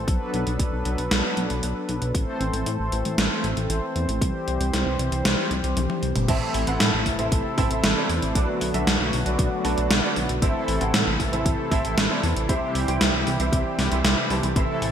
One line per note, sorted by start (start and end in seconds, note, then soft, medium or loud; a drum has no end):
0.00 2.11 A4 medium
0.08 0.19 B1 loud
0.08 2.13 F#3 medium
0.08 2.13 B3 medium
0.08 2.13 D4 medium
0.08 2.13 B4 medium
0.08 kick loud
0.08 closed hi-hat medium
0.34 0.45 B1 medium
0.34 closed hi-hat medium
0.47 0.58 B1 medium
0.47 closed hi-hat medium
0.59 0.70 B1 loud
0.59 kick loud
0.59 closed hi-hat medium
0.73 0.84 B1 medium
0.85 0.97 B1 medium
0.85 closed hi-hat medium
0.98 1.09 B1 medium
0.98 closed hi-hat medium
1.11 1.22 B1 loud
1.11 snare loud
1.11 closed hi-hat medium
1.37 1.48 B1 medium
1.37 closed hi-hat medium
1.50 1.61 B1 medium
1.50 closed hi-hat medium
1.63 1.74 B1 loud
1.63 closed hi-hat medium
1.89 2.00 B1 loud
1.89 closed hi-hat medium
2.02 2.13 B1 medium
2.02 closed hi-hat medium
2.15 2.26 A1 loud
2.15 6.25 E3 medium
2.15 4.20 A3 medium
2.15 6.24 C4 medium
2.15 4.20 A4 medium
2.15 6.24 C5 medium
2.15 kick loud
2.15 closed hi-hat medium
2.41 2.52 A1 medium
2.41 closed hi-hat medium
2.53 2.64 A1 medium
2.53 closed hi-hat medium
2.66 2.77 A2 medium
2.66 closed hi-hat medium
2.79 2.90 A1 medium
2.92 3.03 A1 medium
2.92 closed hi-hat medium
3.05 3.16 A1 medium
3.05 closed hi-hat medium
3.18 3.29 A1 loud
3.18 snare loud
3.18 closed hi-hat medium
3.44 3.55 A1 loud
3.44 closed hi-hat medium
3.57 3.68 A1 medium
3.57 closed hi-hat medium
3.70 3.81 A1 loud
3.70 closed hi-hat medium
3.96 4.07 E2 loud
3.96 closed hi-hat medium
4.09 4.20 A1 medium
4.09 closed hi-hat medium
4.21 4.33 C2 loud
4.21 6.26 G3 medium
4.21 6.26 G4 medium
4.21 kick loud
4.21 closed hi-hat medium
4.48 4.59 C2 loud
4.48 closed hi-hat medium
4.60 4.71 C2 medium
4.60 closed hi-hat medium
4.73 4.84 C2 loud
4.73 snare medium
4.73 closed hi-hat medium
4.86 4.97 C2 medium
4.99 5.10 C2 medium
4.99 closed hi-hat medium
5.12 5.23 C2 medium
5.12 closed hi-hat medium
5.25 5.36 C2 loud
5.25 snare loud
5.25 closed hi-hat medium
5.51 5.62 C2 loud
5.51 closed hi-hat medium
5.64 5.75 C2 medium
5.64 closed hi-hat medium
5.77 5.88 C2 loud
5.77 closed hi-hat loud
5.77 high tom medium
5.90 high tom medium
6.03 6.14 C2 loud
6.03 closed hi-hat medium
6.16 6.27 G1 medium
6.16 closed hi-hat medium
6.16 mid tom medium
6.28 6.39 A1 loud
6.28 8.33 C3 medium
6.28 8.33 E3 medium
6.28 12.45 A3 medium
6.28 6.64 C4 loud
6.28 8.33 E4 medium
6.28 6.64 E4 medium
6.28 8.33 A4 medium
6.28 6.64 A4 medium
6.28 6.64 C5 medium
6.28 6.64 E5 loud
6.28 kick loud
6.28 closed hi-hat medium
6.28 crash loud
6.54 6.65 A1 loud
6.54 open hi-hat medium
6.67 6.78 A1 medium
6.67 6.91 C4 medium
6.67 6.91 E4 medium
6.67 6.91 A4 medium
6.67 6.91 C5 medium
6.67 6.91 F#5 loud
6.67 closed hi-hat medium
6.80 6.91 A2 medium
6.80 snare loud
6.80 closed hi-hat loud
6.93 7.04 A1 medium
7.06 7.17 A1 medium
7.06 kick medium
7.06 open hi-hat medium
7.19 7.30 A1 medium
7.19 7.55 C4 medium
7.19 7.55 E4 medium
7.19 7.55 A4 medium
7.19 7.55 C5 medium
7.19 7.55 E5 loud
7.19 closed hi-hat medium
7.32 7.43 A1 loud
7.32 kick loud
7.32 closed hi-hat loud
7.58 7.69 A1 loud
7.58 7.93 C4 loud
7.58 7.93 E4 loud
7.58 7.93 A4 loud
7.58 7.93 C5 loud
7.58 7.93 E5 loud
7.58 kick loud
7.58 open hi-hat medium
7.71 7.82 A1 medium
7.71 closed hi-hat medium
7.84 7.95 A1 loud
7.84 snare loud
7.84 closed hi-hat loud
7.96 8.32 C4 medium
7.96 8.32 E4 medium
7.96 8.32 A4 medium
7.96 8.32 C5 medium
7.96 8.32 D5 loud
8.09 8.20 E2 loud
8.09 open hi-hat medium
8.22 8.33 A1 medium
8.22 closed hi-hat medium
8.35 8.46 B1 loud
8.35 10.40 D3 medium
8.35 10.40 F#3 medium
8.35 10.40 B3 medium
8.35 8.71 D4 medium
8.35 10.40 F#4 medium
8.35 8.71 F#4 medium
8.35 8.71 A4 medium
8.35 8.71 B4 medium
8.35 8.71 D5 loud
8.35 kick loud
8.35 closed hi-hat loud
8.61 8.72 B1 medium
8.61 open hi-hat medium
8.74 8.85 B1 medium
8.74 8.98 D4 medium
8.74 8.98 F#4 medium
8.74 8.98 A4 medium
8.74 8.98 B4 medium
8.74 8.98 E5 loud
8.74 closed hi-hat medium
8.87 8.98 B1 loud
8.87 snare loud
8.87 closed hi-hat medium
9.00 9.11 B1 medium
9.13 9.24 B1 medium
9.13 open hi-hat medium
9.26 9.37 B1 medium
9.26 9.61 D4 medium
9.26 9.61 F#4 medium
9.26 9.61 A4 medium
9.26 9.61 B4 medium
9.26 9.61 D5 loud
9.26 closed hi-hat medium
9.39 9.50 B1 loud
9.39 kick loud
9.39 closed hi-hat loud
9.64 9.76 B1 loud
9.64 10.00 D4 loud
9.64 10.00 F#4 loud
9.64 10.00 A4 loud
9.64 10.00 B4 medium
9.64 10.00 D5 loud
9.64 open hi-hat medium
9.78 9.89 B1 medium
9.78 closed hi-hat medium
9.91 10.02 B1 loud
9.91 snare loud
9.91 closed hi-hat loud
10.03 10.39 D4 medium
10.03 10.39 F#4 medium
10.03 10.39 A4 medium
10.03 10.39 B4 medium
10.03 10.39 D5 loud
10.16 10.27 B1 loud
10.16 open hi-hat medium
10.29 10.40 B1 medium
10.29 closed hi-hat medium
10.42 10.53 A1 loud
10.42 12.47 C3 medium
10.42 12.47 E3 medium
10.42 10.78 C4 medium
10.42 10.78 E4 medium
10.42 14.52 E4 medium
10.42 10.78 A4 medium
10.42 12.47 A4 medium
10.42 10.78 C5 medium
10.42 10.78 E5 loud
10.42 kick loud
10.42 closed hi-hat loud
10.68 10.79 A1 medium
10.68 open hi-hat medium
10.81 10.92 A1 medium
10.81 11.05 C4 medium
10.81 11.05 E4 medium
10.81 11.05 A4 medium
10.81 11.05 C5 medium
10.81 11.05 F#5 loud
10.81 closed hi-hat medium
10.94 11.05 A2 loud
10.94 snare loud
10.94 closed hi-hat medium
11.07 11.18 A1 medium
11.20 11.31 A1 medium
11.20 kick medium
11.20 open hi-hat medium
11.33 11.44 A1 medium
11.33 11.68 C4 medium
11.33 11.68 E4 medium
11.33 11.68 A4 medium
11.33 11.68 C5 medium
11.33 11.68 E5 medium
11.33 closed hi-hat medium
11.46 11.57 A1 loud
11.46 kick loud
11.46 closed hi-hat medium
11.71 11.83 A1 loud
11.71 12.07 C4 loud
11.71 12.07 E4 loud
11.71 12.07 A4 loud
11.71 12.07 C5 loud
11.71 12.07 E5 loud
11.71 kick loud
11.71 open hi-hat medium
11.85 11.96 A1 medium
11.85 closed hi-hat medium
11.97 12.08 A1 loud
11.97 snare loud
11.97 closed hi-hat medium
12.10 12.46 C4 medium
12.10 12.46 E4 medium
12.10 12.46 A4 medium
12.10 12.46 C5 medium
12.10 12.46 D5 loud
12.23 12.34 E2 loud
12.23 open hi-hat medium
12.36 12.47 A1 medium
12.36 closed hi-hat medium
12.49 12.60 C2 loud
12.49 14.92 C3 medium
12.49 14.92 E3 medium
12.49 14.54 G3 medium
12.49 12.85 C4 loud
12.49 12.85 E4 medium
12.49 14.54 G4 medium
12.49 12.85 G4 medium
12.49 12.85 C5 medium
12.49 12.85 E5 loud
12.49 kick loud
12.49 closed hi-hat medium
12.75 12.86 C2 medium
12.75 open hi-hat medium
12.88 12.99 C2 medium
12.88 13.12 C4 medium
12.88 13.12 E4 medium
12.88 13.12 G4 medium
12.88 13.12 C5 medium
12.88 13.12 G5 loud
12.88 closed hi-hat medium
13.01 13.12 C2 loud
13.01 snare loud
13.01 closed hi-hat medium
13.14 13.25 C2 medium
13.27 13.38 C2 loud
13.27 open hi-hat medium
13.40 13.51 C2 medium
13.40 13.75 C4 medium
13.40 13.75 E4 medium
13.40 13.75 G4 medium
13.40 13.75 C5 medium
13.40 13.75 E5 medium
13.40 closed hi-hat medium
13.53 13.64 C2 loud
13.53 kick loud
13.53 closed hi-hat medium
13.79 13.90 C2 loud
13.79 snare medium
13.79 open hi-hat medium
13.91 14.03 C2 medium
13.91 14.27 C4 medium
13.91 14.27 E4 medium
13.91 14.27 G4 medium
13.91 14.27 C5 medium
13.91 14.27 E5 medium
13.91 closed hi-hat medium
14.04 14.15 C2 loud
14.04 snare loud
14.04 closed hi-hat medium
14.30 14.41 C2 medium
14.30 14.53 C4 medium
14.30 14.53 E4 medium
14.30 14.53 G4 medium
14.30 14.53 C5 medium
14.30 14.53 A5 medium
14.30 open hi-hat medium
14.43 14.54 C2 medium
14.43 closed hi-hat medium
14.56 14.67 A1 loud
14.56 14.92 A3 medium
14.56 14.92 C4 medium
14.56 14.92 E4 medium
14.56 14.92 A4 medium
14.56 14.92 C5 medium
14.56 14.92 E5 loud
14.56 kick loud
14.56 closed hi-hat medium
14.82 14.92 A1 medium
14.82 open hi-hat medium